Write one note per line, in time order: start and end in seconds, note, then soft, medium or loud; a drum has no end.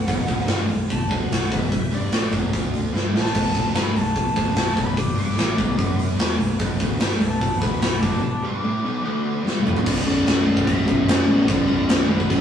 0.00 0.67 F#5 medium
0.07 0.27 B0 medium
0.07 0.28 B1 loud
0.07 kick loud
0.07 open hi-hat medium
0.28 0.47 D1 medium
0.28 0.49 D2 loud
0.28 kick loud
0.28 open hi-hat medium
0.39 snare soft
0.47 0.67 G1 loud
0.47 0.69 G2 loud
0.47 snare loud
0.47 open hi-hat medium
0.69 0.88 B0 medium
0.69 0.86 B1 medium
0.69 open hi-hat medium
0.90 1.09 B0 medium
0.90 1.07 B1 medium
0.90 1.11 A5 loud
0.90 kick medium
0.90 open hi-hat medium
1.11 1.29 D1 medium
1.11 1.30 D2 loud
1.11 1.52 F#5 medium
1.11 kick loud
1.11 open hi-hat medium
1.29 1.49 B0 medium
1.29 1.47 B1 medium
1.29 snare loud
1.29 open hi-hat medium
1.51 1.70 B0 medium
1.51 1.72 B1 loud
1.51 1.93 E5 medium
1.51 kick loud
1.51 open hi-hat medium
1.71 1.91 B0 medium
1.71 1.88 B1 medium
1.71 kick loud
1.71 open hi-hat medium
1.91 2.11 G1 medium
1.91 2.13 G2 medium
1.91 2.33 D5 medium
1.91 open hi-hat medium
2.12 2.31 A1 loud
2.12 2.33 A2 loud
2.12 snare loud
2.12 open hi-hat medium
2.32 2.52 B0 loud
2.32 2.53 B1 loud
2.32 kick loud
2.32 open hi-hat medium
2.53 2.91 D1 loud
2.53 2.94 D2 loud
2.53 kick loud
2.53 open hi-hat medium
2.74 open hi-hat medium
2.94 3.13 G1 loud
2.94 3.13 G2 loud
2.94 snare medium
3.14 3.33 A1 medium
3.14 3.34 A2 loud
3.14 3.74 A5 loud
3.14 snare medium
3.25 snare medium
3.30 9.79 B3 medium
3.30 9.79 F#4 medium
3.30 9.80 B4 medium
3.34 3.54 B0 medium
3.34 3.54 B1 loud
3.34 kick loud
3.34 crash loud
3.54 3.74 D1 medium
3.54 3.74 D2 loud
3.54 kick medium
3.54 open hi-hat medium
3.74 3.94 G1 loud
3.74 3.95 G2 loud
3.74 3.98 B5 loud
3.74 snare loud
3.74 open hi-hat medium
3.95 4.14 B0 medium
3.95 4.12 B1 medium
3.95 4.35 A5 loud
3.95 open hi-hat medium
4.16 4.35 B0 medium
4.16 4.32 B1 medium
4.16 kick medium
4.16 open hi-hat medium
4.36 4.55 D1 medium
4.36 4.55 D2 loud
4.36 4.76 A5 medium
4.36 kick loud
4.36 open hi-hat medium
4.55 4.75 B0 medium
4.55 4.72 B1 medium
4.55 snare loud
4.55 open hi-hat medium
4.76 4.95 B0 loud
4.76 4.94 B1 loud
4.76 4.98 B5 loud
4.76 kick loud
4.76 open hi-hat medium
4.95 5.15 B0 medium
4.95 5.12 B1 medium
4.95 5.17 D6 loud
4.95 kick loud
4.95 open hi-hat medium
5.14 5.35 G1 medium
5.14 5.35 G2 loud
5.14 open hi-hat medium
5.19 6.37 D6 loud
5.30 snare soft
5.36 5.56 A1 loud
5.36 5.55 A2 loud
5.36 snare loud
5.36 open hi-hat medium
5.56 5.77 B0 loud
5.56 5.76 B1 loud
5.56 kick loud
5.56 open hi-hat medium
5.76 6.16 F#1 loud
5.76 6.16 F#2 loud
5.76 kick loud
5.76 open hi-hat medium
5.99 open hi-hat medium
6.17 6.38 E1 loud
6.17 6.37 E2 loud
6.17 snare loud
6.17 open hi-hat medium
6.38 6.58 B0 medium
6.38 6.55 B1 medium
6.38 open hi-hat medium
6.59 6.79 B0 loud
6.59 6.78 B1 loud
6.59 kick loud
6.59 open hi-hat medium
6.79 6.99 D1 medium
6.79 6.99 D2 loud
6.79 kick loud
6.79 open hi-hat medium
7.00 7.19 G1 loud
7.00 7.20 G2 loud
7.00 snare loud
7.00 open hi-hat medium
7.20 7.39 B0 medium
7.20 7.37 B1 medium
7.20 7.39 E5 loud
7.20 7.38 A5 loud
7.20 open hi-hat medium
7.39 7.60 B0 medium
7.39 7.57 B1 medium
7.39 7.58 E5 medium
7.39 7.60 A5 loud
7.39 kick medium
7.39 open hi-hat medium
7.58 7.80 D1 medium
7.58 7.81 D2 loud
7.58 7.79 F#5 medium
7.58 7.80 B5 medium
7.58 kick loud
7.58 open hi-hat medium
7.81 8.01 B0 medium
7.81 7.98 B1 medium
7.81 8.00 F#5 medium
7.81 8.01 B5 medium
7.81 snare loud
7.81 open hi-hat medium
8.00 8.21 B0 medium
8.00 8.21 B1 loud
8.00 8.20 A5 medium
8.00 8.21 D6 loud
8.00 kick loud
8.00 open hi-hat medium
8.23 8.39 B1 medium
8.23 8.42 A5 medium
8.23 8.43 D6 medium
8.43 8.63 G2 loud
8.43 9.63 D6 loud
8.64 8.83 A2 loud
8.84 9.05 B1 loud
9.05 9.44 D2 loud
9.46 9.65 G2 loud
9.46 snare medium
9.57 high tom medium
9.67 9.86 A2 loud
9.67 mid tom medium
9.76 floor tom medium
9.86 10.04 B0 medium
9.86 10.05 B1 loud
9.86 10.05 F#2 loud
9.86 10.06 B2 loud
9.86 10.07 D5 loud
9.86 kick loud
9.86 crash loud
9.86 crash medium
10.05 10.24 B0 medium
10.05 10.25 B1 medium
10.05 10.25 F#2 medium
10.05 10.26 B2 loud
10.10 10.27 D5 loud
10.25 10.63 B0 loud
10.25 10.45 B1 medium
10.25 10.45 F#2 loud
10.25 10.46 B2 loud
10.25 10.65 D5 loud
10.25 snare loud
10.25 crash medium
10.38 snare soft
10.46 10.65 B1 medium
10.46 10.66 F#2 medium
10.46 10.66 B2 medium
10.57 kick medium
10.66 10.85 B0 loud
10.66 10.85 B1 loud
10.66 10.86 F#2 loud
10.66 10.87 B2 loud
10.66 11.14 E5 loud
10.66 kick loud
10.66 crash medium
10.87 11.04 B0 medium
10.87 11.06 B1 loud
10.87 11.06 F#2 medium
10.87 11.07 B2 loud
10.87 kick medium
11.05 11.24 F#1 loud
11.05 11.25 B1 medium
11.05 11.25 F#2 loud
11.05 11.26 B2 loud
11.05 crash medium
11.09 snare loud
11.14 11.27 D5 loud
11.26 11.45 A1 medium
11.26 11.45 B1 medium
11.26 11.46 F#2 medium
11.26 11.46 B2 loud
11.26 12.11 D5 loud
11.46 11.85 B0 medium
11.46 11.66 B1 loud
11.46 11.67 F#2 loud
11.46 11.67 B2 loud
11.46 kick loud
11.46 crash medium
11.68 11.87 B1 loud
11.68 11.88 F#2 medium
11.68 11.88 B2 loud
11.87 12.06 B0 loud
11.87 12.07 B1 loud
11.87 12.08 F#2 loud
11.87 12.08 B2 loud
11.87 snare loud
11.87 crash medium
12.01 snare soft
12.07 12.26 B0 loud
12.07 12.28 B1 medium
12.07 12.28 F#2 loud
12.07 12.28 B2 medium
12.07 12.41 B4 loud
12.20 kick medium
12.29 12.41 B0 loud
12.29 12.41 B1 loud
12.29 12.41 F#2 loud
12.29 12.41 B2 loud
12.29 kick loud
12.29 crash medium